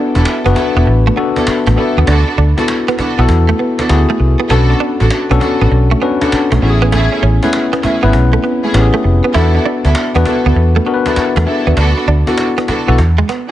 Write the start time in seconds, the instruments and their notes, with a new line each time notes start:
Already playing: tine electric piano B3 D4 F#4 A4, clean electric guitar D4
0.15 fingered electric bass E1, string section B3 D4 E4 A4, cajon bass
0.25 cajon slap
0.45 fingered electric bass F#1, tine electric piano B3 D4 F#4 B4, clean electric guitar B3, cajon slap
0.55 string section B3 D4 E4 A4, muted clean electric guitar stroke, cajon bass
0.76 fingered electric bass E1, clean electric guitar B3, cajon slap
0.86 fingered electric bass A1, muted clean electric guitar stroke, cajon slap
1.06 clean electric guitar A3, cajon slap
1.16 tine electric piano B3 D4 F#4 A4, clean electric guitar B3, cajon slap
1.36 string section B3 D4 E4 A4, cajon bass
1.47 muted fingered electric bass stroke, cajon slap
1.67 fingered electric bass A1, clean electric guitar A3, cajon bass
1.76 string section B3 D4 E4 A4, tine electric piano B3 D4 F#4 A4, muted clean electric guitar stroke
1.97 fingered electric bass D#2, clean electric guitar B3, cajon slap
2.07 fingered electric bass D2, string section B3 D4 F#4 A4, clean electric guitar D4, cajon bass
2.28 muted clean electric guitar stroke, cajon slap
2.38 fingered electric bass D2, clean electric guitar D4, cajon slap
2.57 string section B3 D4 F#4 A4, tine electric piano B3 E4 F#4 A4, cajon bass
2.68 cajon slap
2.88 clean electric guitar B3, cajon slap
2.98 string section B3 D4 F#4 A4, muted clean electric guitar stroke, muted fingered electric bass stroke, cajon bass
3.18 fingered electric bass B1, tine electric piano B3 E4 F#4 A4, clean electric guitar B3, cajon slap
3.29 fingered electric bass E2, muted clean electric guitar stroke, cajon bass
3.49 clean electric guitar A3, cajon slap
3.59 clean electric guitar B3, cajon slap
3.78 string section B3 D4 F#4 A4, cajon bass
3.89 fingered electric bass D2, tine electric piano B3 E4 F#4 G#4, cajon slap
4.09 clean electric guitar A3, cajon slap
4.20 fingered electric bass C2, muted clean electric guitar stroke
4.40 clean electric guitar B3, cajon slap
4.49 fingered electric bass B1, string section B3 D4 F#4 A4, clean electric guitar B3, tine electric piano C#4 D4 F#4 A4, cajon bass
4.70 muted clean electric guitar stroke, cajon slap
4.80 clean electric guitar D4, cajon slap
5.00 fingered electric bass A1, string section B3 D4 F#4 A4, cajon bass
5.11 cajon slap
5.30 fingered electric bass B1, clean electric guitar B3, tine electric piano C#4 D4 F#4 A4, cajon slap
5.40 string section B3 D4 F#4 A4, muted clean electric guitar stroke, cajon bass
5.61 fingered electric bass A1, clean electric guitar B3, cajon slap
5.71 fingered electric bass B1, muted clean electric guitar stroke, cajon slap
5.91 clean electric guitar A3, cajon slap
6.02 clean electric guitar B3, tine electric piano C#4 D4 F#4 B4, cajon slap
6.21 string section B3 D4 F#4 A4, cajon bass
6.32 muted fingered electric bass stroke, cajon slap
6.52 fingered electric bass B1, clean electric guitar A3, cajon bass
6.61 fingered electric bass A1, string section A3 C#4 E4 G#4, tine electric piano B3 C#4 E4 F#4, muted clean electric guitar stroke
6.70 tine electric piano G#4
6.82 clean electric guitar B3, cajon slap
6.92 string section A3 C#4 E4 G#4, clean electric guitar A3, cajon bass
7.12 muted clean electric guitar stroke, cajon slap
7.23 fingered electric bass A1, clean electric guitar C#4, cajon slap
7.43 string section A3 C#4 E4 G#4, tine electric piano B3 C#4 E4 B4, cajon bass
7.53 cajon slap
7.73 clean electric guitar B3, cajon slap
7.83 string section A3 C#4 E4 G#4, muted clean electric guitar stroke, muted fingered electric bass stroke, cajon bass
8.03 fingered electric bass G#1, clean electric guitar B3, tine electric piano B3 C4 E4 B4, cajon slap
8.10 fingered electric bass B1, tine electric piano C#4, muted clean electric guitar stroke, cajon bass
8.33 clean electric guitar A3, cajon slap
8.44 clean electric guitar B3, cajon slap
8.63 string section A3 C#4 E4 G#4, cajon slap
8.74 fingered electric bass A1, tine electric piano B3 C#4 E4 G4, cajon slap
8.82 tine electric piano G#4
8.94 clean electric guitar A3, cajon slap
9.04 fingered electric bass F1, muted clean electric guitar stroke
9.24 clean electric guitar B3, cajon slap
9.34 fingered electric bass E2, string section B3 D4 E4 A4, tine electric piano B3 D4 F#4 A4, clean electric guitar E4, cajon bass
9.55 muted clean electric guitar stroke, cajon slap
9.65 clean electric guitar D4, cajon slap
9.84 fingered electric bass D2, string section B3 D4 E4 A4, cajon bass
9.95 cajon slap
10.15 fingered electric bass E2, tine electric piano B3 D4 F#4 B4, clean electric guitar B3, cajon slap
10.25 string section B3 D4 E4 A4, muted clean electric guitar stroke, cajon bass
10.45 fingered electric bass D2, clean electric guitar B3, cajon slap
10.55 fingered electric bass E2, muted clean electric guitar stroke, cajon slap
10.76 clean electric guitar A3
10.86 tine electric piano B3 D4 F#4 A#4, clean electric guitar B3, cajon slap
10.94 tine electric piano B4
11.06 string section B3 D4 E4 A4, cajon bass
11.16 tine electric piano A4 F#5, muted fingered electric bass stroke, cajon slap
11.36 fingered electric bass E2, clean electric guitar A3, cajon bass
11.46 string section B3 D4 E4 A4, tine electric piano G#4 E5, muted clean electric guitar stroke
11.66 fingered electric bass D#2, clean electric guitar B3, tine electric piano F#4 D5, cajon slap
11.76 fingered electric bass D2, string section B3 D4 F#4 A4, clean electric guitar D4, cajon bass
11.97 muted clean electric guitar stroke, cajon slap
12.07 fingered electric bass D2, clean electric guitar D4, cajon slap
12.27 tine electric piano B3 E4 F#4 A4, string section B3 D4 F#4 A4, cajon bass
12.38 cajon slap
12.58 clean electric guitar B3, cajon slap
12.67 string section B3 D4 F#4 A4, muted fingered electric bass stroke, muted clean electric guitar stroke, cajon bass
12.87 fingered electric bass B1, tine electric piano B3 E4 F#4 A4, clean electric guitar B3, cajon slap
12.98 fingered electric bass E2, muted clean electric guitar stroke, cajon bass, cajon slap
13.18 clean electric guitar G#3
13.29 clean electric guitar B3, cajon slap